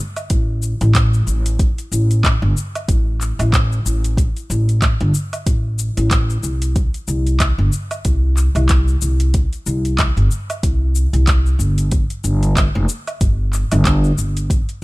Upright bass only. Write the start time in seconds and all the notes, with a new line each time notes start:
0.30 A1
0.81 A1
1.27 A1
1.92 A1
2.42 G1
2.88 A1
3.39 A1
3.85 A1
4.50 A1
5.01 G1
5.46 A1
5.97 A1
6.43 C2
7.08 C2
7.58 G1
8.05 C2
8.55 C2
9.02 C2
9.66 C2
10.17 G1
10.63 C2
11.13 C2
11.59 G1
12.24 G1
12.75 F1
13.21 G1
13.72 G1
14.18 G1